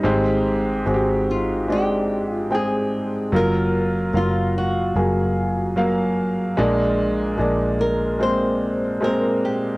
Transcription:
0.03 G#1 G#2 G#3 C4 G4
0.86 G#1 G#3 C4 F#4
0.94 G4
1.31 F4
1.68 G#3 C4 D4 G4
2.32 F4
2.50 G#3 C4 G5
2.54 G#4
3.32 F#1 F#3 A#3 F4
3.36 A#4
4.13 F#1 F#3 A#3 F4 F5
4.58 F#4
4.95 F#1 F#3 A#3 G#4
5.76 F#3 A#3 F5
6.57 A#1 A#2 G#3 A#3 D4
7.38 A#1 G#3 A#3 D4
7.81 A#4
8.19 G#3 A#3 C4 C5
9.01 G#3 A#3 C4 A#4
9.45 G4

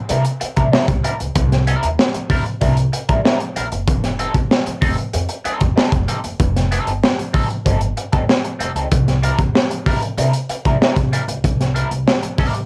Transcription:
0.09 C3 G3 D4 E4 A#4, closed hi-hat
0.25 closed hi-hat
0.40 muted clean electric guitar stroke, muted upright bass stroke, closed hi-hat
0.57 C3 G3 D4 E4 A#4, kick, closed hi-hat
0.72 G3 D4 E4 A#4, muted upright bass stroke, snare
0.88 C2, muted clean electric guitar stroke, kick, closed hi-hat
1.04 G3 D4 E4 A#4, closed hi-hat
1.19 C#2, muted clean electric guitar stroke, closed hi-hat
1.35 C2, kick, closed hi-hat
1.52 snare, closed hi-hat
1.67 G3 D4 E4 A#4, closed hi-hat
1.83 D#2, closed hi-hat
1.99 muted clean electric guitar stroke, snare
2.14 muted clean electric guitar stroke, muted upright bass stroke, closed hi-hat
2.30 E2 G3 D4 E4 A#4, kick, open hi-hat
2.46 muted clean electric guitar stroke, closed hi-hat
2.61 C2 G3 D4 E4 A#4, kick, closed hi-hat
2.77 closed hi-hat
2.92 muted clean electric guitar stroke, closed hi-hat
3.09 A#1 G3 D4 E4 A#4, kick, closed hi-hat
3.24 G3 D4 E4 A#4, snare
3.40 muted clean electric guitar stroke, closed hi-hat
3.56 A#1 G3 D4 E4 A#4, closed hi-hat
3.72 F#1, muted clean electric guitar stroke, closed hi-hat
3.87 F1, kick, closed hi-hat
4.04 snare, closed hi-hat
4.19 G3 C4 D#4 A4, closed hi-hat
4.34 A1, kick, closed hi-hat
4.51 muted clean electric guitar stroke, snare
4.66 muted clean electric guitar stroke, muted upright bass stroke, closed hi-hat
4.81 F1 G3 C4 D#4 A4, kick, open hi-hat
4.98 muted clean electric guitar stroke, closed hi-hat
5.13 F2, muted clean electric guitar stroke, closed hi-hat
5.29 muted clean electric guitar stroke, closed hi-hat
5.44 G3 C4 D#4 A4, muted upright bass stroke, closed hi-hat
5.61 F2, muted clean electric guitar stroke, kick, closed hi-hat
5.76 G3 C4 D#4 A4, muted upright bass stroke, snare
5.92 F1, muted clean electric guitar stroke, kick, closed hi-hat
6.08 G3 C4 D#4 A4, closed hi-hat
6.24 F#1, muted clean electric guitar stroke, closed hi-hat
6.40 F1, kick, closed hi-hat
6.56 snare, closed hi-hat
6.71 G3 C4 D#4 A4, closed hi-hat
6.87 G1, closed hi-hat
7.03 muted clean electric guitar stroke, snare
7.18 muted clean electric guitar stroke, muted upright bass stroke, closed hi-hat
7.33 A1 G3 C4 D#4 A4, kick, open hi-hat
7.50 muted clean electric guitar stroke, closed hi-hat
7.66 G1 G3 C4 D#4 A4, kick, closed hi-hat
7.81 closed hi-hat
7.97 muted clean electric guitar stroke, closed hi-hat
8.12 F1 G3 C4 D#4 A4, kick, closed hi-hat
8.29 muted clean electric guitar stroke, snare
8.45 muted clean electric guitar stroke, closed hi-hat
8.59 F1 G3 C4 D#4 A4, closed hi-hat
8.76 C#2 G3 C4 D#4 A4, closed hi-hat
8.91 C2, kick, closed hi-hat
9.08 snare, closed hi-hat
9.23 G3 D4 E4 A#4, closed hi-hat
9.39 E2, kick, closed hi-hat
9.54 muted clean electric guitar stroke, snare
9.71 muted clean electric guitar stroke, closed hi-hat
9.86 G3 D4 E4 A#4, kick, open hi-hat
10.03 muted clean electric guitar stroke, closed hi-hat
10.17 C3 G3 D4 E4 A#4, closed hi-hat
10.33 closed hi-hat
10.49 muted upright bass stroke, muted clean electric guitar stroke, closed hi-hat
10.65 C3 G3 D4 E4 A#4, kick, closed hi-hat
10.80 G3 D4 E4 A#4, muted upright bass stroke, snare
10.96 C3, muted clean electric guitar stroke, kick, closed hi-hat
11.13 G3 D4 E4 A#4, closed hi-hat
11.28 C#2, muted clean electric guitar stroke, closed hi-hat
11.44 C2, kick, closed hi-hat
11.61 snare, closed hi-hat
11.74 G3 D4 E4 A#4, closed hi-hat
11.91 C2, closed hi-hat
12.07 muted clean electric guitar stroke, snare
12.23 muted clean electric guitar stroke, muted upright bass stroke, closed hi-hat
12.38 D#2 G3 D4 E4 A#4, kick, open hi-hat
12.55 muted clean electric guitar stroke, closed hi-hat

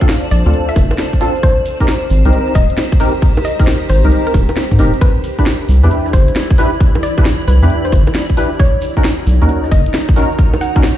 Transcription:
Already playing: C4 D4 F4 A4 C5 D5 F5 A5
0.01 C4 D4 F4 A4, kick, shaker
0.09 snare, closed hi-hat, shaker
0.31 A#1 D5, open hi-hat, shaker
0.46 D2 C4 D4 F4 A4, closed hi-hat, shaker
0.53 closed hi-hat, shaker
0.69 E5, cross-stick, shaker
0.76 F1, kick, open hi-hat, high bongo, shaker
0.91 closed hi-hat, high bongo, shaker
0.98 snare, closed hi-hat, shaker
1.12 kick, shaker
1.20 C4 D4 F4 A4, open hi-hat, shaker
1.35 shaker
1.43 D#4 G4 A#4 C5, kick, closed hi-hat, shaker
1.66 open hi-hat, shaker
1.80 C4 D#4 G4 A#4, kick, shaker
1.88 snare, closed hi-hat, shaker
2.02 A#5
2.10 G#1, open hi-hat, shaker
2.24 C2 C4 D#4 G4 A#4, closed hi-hat, shaker
2.32 closed hi-hat, shaker
2.47 cross-stick, shaker
2.55 D#1 D#5, kick, open hi-hat, shaker
2.69 closed hi-hat, shaker
2.77 snare, closed hi-hat, shaker
2.92 kick, shaker
2.99 C4 D#4 G4 A#4, open hi-hat, shaker
3.14 shaker
3.21 kick, closed hi-hat, shaker
3.37 high bongo, shaker
3.45 D#5, open hi-hat, shaker
3.59 C4 D#4 G4 A#4, kick, shaker
3.67 snare, closed hi-hat, shaker
3.82 shaker
3.89 G#1 C5, cross-stick, open hi-hat, shaker
4.04 C2 C4 D#4 G4 A#4, closed hi-hat, shaker
4.12 closed hi-hat, shaker
4.26 A#4, cross-stick, shaker
4.34 D#1, kick, open hi-hat, high bongo, shaker
4.49 closed hi-hat, high bongo, shaker
4.56 snare, closed hi-hat, shaker
4.71 G#2, kick, shaker
4.79 D#1 C4 D#4 G4 A#4, open hi-hat, shaker
4.94 closed hi-hat, shaker
5.01 D4 E4 B4 B5, kick, closed hi-hat, shaker
5.23 D5, open hi-hat, shaker
5.31 B5
5.39 D4 E4 G4 B4, kick, shaker
5.46 snare, closed hi-hat, shaker
5.69 C2, open hi-hat, shaker
5.83 E2 D4 E4 G4 B4, closed hi-hat, shaker
5.91 closed hi-hat, shaker
6.06 cross-stick, shaker
6.13 G1 C5, kick, open hi-hat, shaker
6.28 closed hi-hat, shaker
6.36 snare, closed hi-hat, shaker
6.50 kick, shaker
6.58 D4 E4 G4 B4, open hi-hat, shaker
6.73 shaker
6.80 kick, closed hi-hat, shaker
6.95 high bongo
7.03 D5, open hi-hat, shaker
7.18 D4 E4 G4 B4, kick, shaker
7.25 snare, closed hi-hat, shaker
7.48 C2 B4, open hi-hat, shaker
7.62 E2 D4 E4 G4 B4, closed hi-hat, shaker
7.70 closed hi-hat, shaker
7.85 C5, cross-stick, shaker
7.92 G1, kick, open hi-hat, high bongo, shaker
8.07 closed hi-hat, high bongo, shaker
8.15 snare, closed hi-hat, shaker
8.30 kick, shaker
8.37 D4 E4 G4 B4, open hi-hat, shaker
8.52 shaker
8.59 C#4 D#4 F#4 C#5, kick, closed hi-hat, shaker
8.79 A#5, open hi-hat, shaker
8.85 C#5
8.97 C#4 D#4 F#4 A#4, kick, shaker
9.04 snare, closed hi-hat, shaker
9.26 B1, open hi-hat, shaker
9.42 D#2 C#4 D#4 F#4 A#4, closed hi-hat, shaker
9.48 closed hi-hat, shaker
9.64 cross-stick, shaker
9.71 F#1 D#5, kick, open hi-hat, shaker
9.86 closed hi-hat, shaker
9.93 snare, closed hi-hat, shaker
10.09 kick, shaker
10.16 C#4 D#4 F#4 A#4, open hi-hat, shaker
10.31 shaker
10.39 kick, closed hi-hat, shaker
10.54 high bongo, shaker
10.61 F#5, open hi-hat, shaker
10.75 C#4 D#4 F#4 A#4, kick, shaker
10.83 snare, closed hi-hat, shaker

